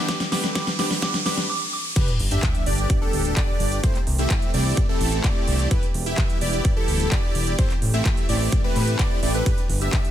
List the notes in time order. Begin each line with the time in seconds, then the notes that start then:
Already playing: E3 G4, riser
0.08 G3 A3 B3 C4 D4 G4 B4 D6, kick, snare, closed hi-hat
0.20 snare, closed hi-hat
0.32 G3 B3 D4 G4 B4 D6, snare, open hi-hat
0.44 snare, closed hi-hat
0.55 G3 B3 D4 G4 B4 D6, kick, snare, closed hi-hat
0.67 snare, closed hi-hat
0.78 G3 B3 D4 G4 B4 D6, snare, open hi-hat
0.91 snare, open hi-hat
1.02 G3 B3 D4 G4 B4 D6, kick, snare, closed hi-hat
1.14 snare, closed hi-hat
1.25 G3 B3 D4 G4 B4 D6, snare, open hi-hat
1.37 snare, closed hi-hat
1.50 D6
1.73 D6
1.96 D3 G3 B3 D4 G4 B4, kick, closed hi-hat, crash, sub drop
2.08 closed hi-hat
2.20 G1, open hi-hat
2.31 D4 G4 E5, closed hi-hat
2.43 kick, clap, closed hi-hat
2.55 closed hi-hat
2.66 G1 D4 G4 D5, open hi-hat
2.78 closed hi-hat
2.90 kick, closed hi-hat
3.02 D4 G4 A4
3.13 D1, open hi-hat
3.25 closed hi-hat
3.37 D4 G4 D5, kick, clap, closed hi-hat
3.60 G1, open hi-hat
3.72 closed hi-hat
3.83 E3 A3 C4 E4 G4 C5, kick, closed hi-hat
3.95 clap, closed hi-hat
4.07 C2, open hi-hat
4.19 A3 C4 E4 G4 E5, closed hi-hat
4.30 kick, clap, closed hi-hat
4.42 closed hi-hat
4.54 C2 A3 C4 E4 G4 D5, open hi-hat
4.66 open hi-hat
4.77 kick, closed hi-hat
4.89 A3 C4 E4 G4 A4
5.01 A1, open hi-hat
5.12 closed hi-hat
5.24 A3 C4 E4 G4 D5, kick, clap, closed hi-hat
5.48 C2, open hi-hat
5.59 closed hi-hat
5.71 E3 G3 B3 E4 G4 B4, kick, closed hi-hat
5.83 closed hi-hat
5.94 E1, open hi-hat
6.06 E4 G4 E5, closed hi-hat
6.18 kick, clap, closed hi-hat
6.30 closed hi-hat
6.41 E1 E4 G4 D5, open hi-hat
6.53 closed hi-hat
6.65 kick, closed hi-hat
6.77 E4 G4 A4
6.88 D1, open hi-hat
7.00 closed hi-hat
7.12 D5, kick, clap, closed hi-hat
7.35 E1, open hi-hat
7.47 closed hi-hat
7.59 E3 A3 C4 E4 G4 C5, kick, closed hi-hat
7.70 clap, closed hi-hat
7.82 A1, open hi-hat
7.94 A3 C4 E4 G4 E5, closed hi-hat
8.06 kick, clap, closed hi-hat
8.17 closed hi-hat
8.29 A1 A3 C4 E4 G4 D5, open hi-hat
8.41 open hi-hat
8.52 kick, closed hi-hat
8.64 A3 C4 E4 G4 B4
8.76 A2, open hi-hat
8.88 closed hi-hat
8.99 A3 C4 E4 G4 D5, kick, clap, closed hi-hat
9.23 A1 A3 C4 E4 G4 D5, open hi-hat
9.34 A3 C4 E4 G4 B4, closed hi-hat
9.46 D3 G3 B3 D4 G4 B4, kick, closed hi-hat, ride
9.58 closed hi-hat
9.70 G1, open hi-hat
9.81 D4 G4 E5, closed hi-hat
9.93 kick, clap, closed hi-hat, ride
10.05 closed hi-hat